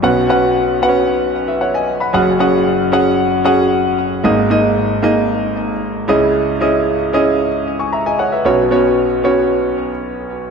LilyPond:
<<
  \new Staff \with { instrumentName = "Grand piano" } { \time 4/4 \key b \major \tempo 4 = 114 << { r2 r8. <b' e''>16 <cis'' fis''>16 <dis'' gis''>8 <fis'' b''>16~ | <fis'' b''>16 r2. r8. | r1 | r2 r8. <gis'' cis'''>16 <e'' ais''>16 <dis'' gis''>16 <cis'' fis''>16 <b' e''>16~ |
<b' e''>16 r2. r8. | } \\ { <cis' fis' b' fis''>8 <cis' fis' b' fis''>8 r8 <b cis' fis' b' fis''>4~ <b cis' fis' b' fis''>16 r4 r16 | <cis' fis' gis' fis''>8 <cis' fis' gis' fis''>8 r8 <cis' fis' gis' fis''>8 r8 <cis' fis' gis' fis''>4 r8 | <ais dis' gis' dis''>8 <ais dis' gis' dis''>8 r8 <ais dis' gis' dis''>4~ <ais dis' gis' dis''>16 r8. <cis' e' gis' dis''>8~ | <cis' e' gis' dis''>8 <cis' e' gis' dis''>8 r8 <cis' e' gis' dis''>8 r2 |
<b cis' fis' cis''>8 <b cis' fis' cis''>8 r8 <b cis' fis' cis''>4~ <b cis' fis' cis''>16 r4 r16 | } >> }
  \new Staff \with { instrumentName = "Grand piano" } { \clef bass \time 4/4 \key b \major <b,, b,>1 | <fis,, fis,>1 | <gis,, gis,>2.~ <gis,, gis,>8 <cis, cis>8~ | <cis, cis>2.~ <cis, cis>8 r8 |
<b,, b,>1 | }
>>